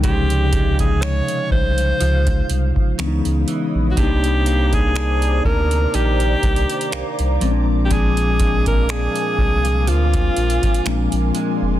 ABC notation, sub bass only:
X:1
M:4/4
L:1/16
Q:"Swing 16ths" 1/4=61
K:Bbmix
V:1 name="Sub bass" clef=bass
_D,,6 C,,2 D,,2 C,, z D,, D,, z B,,, | C,,6 D,,2 B,,,2 C,, z C,, C,, B,,,2- | B,,,6 C,,2 D,,2 B,,, z B,,, B,,, z F,,, |]